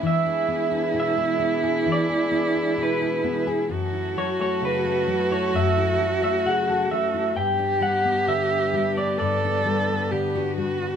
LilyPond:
<<
  \new Staff \with { instrumentName = "Clean electric guitar" } { \time 4/4 \key e \mixolydian \tempo 4 = 66 e''4 e''4 d''4 b'8. r16 | r8 cis''16 cis''16 b'8. cis''16 e''8. e''16 fis''8 e''8 | g''8 fis''8 e''8. d''16 d''4. r8 | }
  \new Staff \with { instrumentName = "Cello" } { \time 4/4 \key e \mixolydian e'1 | fis'1 | g'2 a'4 g'8 fis'8 | }
  \new Staff \with { instrumentName = "String section" } { \time 4/4 \key e \mixolydian <gis b d' e' b'>1 | <fis a cis' e' a'>1 | <g b d' b'>1 | }
  \new Staff \with { instrumentName = "Steel-string acoustic guitar" } { \time 4/4 \key e \mixolydian << { r16 gis'8 d'8 gis'8 gis'8 gis'8 d'8 gis'8 gis'16 | r16 e'8 a8 a'8 e'8 e'8 a8 a'8 e'16 | r16 d'8 b4 d'8 d'8 b8 fis'8 d'16 | } \\ { e8 b8 b,8 b8 e8 b8 b,8 b8 | fis,8 fis8 cis8 fis8 fis,8 fis8 cis8 fis8 | g,8 g8 d8 g8 g,8 g8 d8 g8 | } >> }
>>